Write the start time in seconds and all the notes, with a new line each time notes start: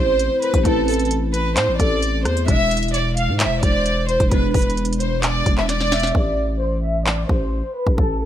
Already playing: A1 A3 C4 E4 C5
0.19 closed hi-hat
0.42 B4, closed hi-hat
0.54 A1, kick, closed hi-hat
0.63 A1 A3 C4 E4 A4 B4, kick, closed hi-hat
0.88 A4, closed hi-hat, open hi-hat
0.94 closed hi-hat
0.99 closed hi-hat
1.05 closed hi-hat
1.11 closed hi-hat
1.34 B4, closed hi-hat
1.57 A2 C5, clap, closed hi-hat
1.68 A1
1.79 A1 A4 D5, kick, closed hi-hat
2.02 closed hi-hat
2.25 E2 C5, cross-stick, closed hi-hat
2.37 closed hi-hat
2.46 E1 B2 G#3 E4 E5, kick, closed hi-hat
2.71 closed hi-hat
2.77 closed hi-hat
2.83 closed hi-hat
2.88 closed hi-hat
2.94 D5, closed hi-hat
3.17 F5, closed hi-hat
3.28 G#2
3.39 C5 E5, clap, closed hi-hat
3.46 E1
3.63 E1 D5, kick, closed hi-hat
3.86 closed hi-hat
4.09 C5, closed hi-hat
4.20 E1, kick, closed hi-hat
4.30 E1 G#3 B3 D4 B4, kick, closed hi-hat
4.54 E1 B4, kick, closed hi-hat, open hi-hat
4.62 closed hi-hat
4.70 closed hi-hat
4.77 closed hi-hat
4.85 closed hi-hat
4.93 closed hi-hat
5.00 C5, closed hi-hat
5.23 D5, clap, closed hi-hat
5.46 E1, kick, closed hi-hat
5.58 E5, clap
5.69 D5, snare, closed hi-hat
5.80 snare
5.92 E5, snare, closed hi-hat
6.00 snare, closed hi-hat
6.07 closed hi-hat
6.15 A1 D5, kick
6.61 C5
6.83 E5
7.06 D5, clap
7.29 A1 C5, kick
7.75 B4
7.87 A1, kick
7.98 A1 A4, kick
8.21 A4